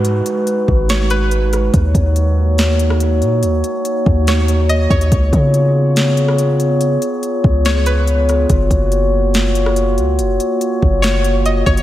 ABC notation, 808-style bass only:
X:1
M:4/4
L:1/8
Q:1/4=142
K:C#mix
V:1 name="808-style bass" clef=bass
G,, z2 G,,,4- G,,, | D,, D,,6 A,, | D,, z2 D,,4 D,, | C,, C,6- C,- |
C, z2 C,,4- C,, | F,,, F,,,6 C,, | F,,, z2 F,,,4 F,,, |]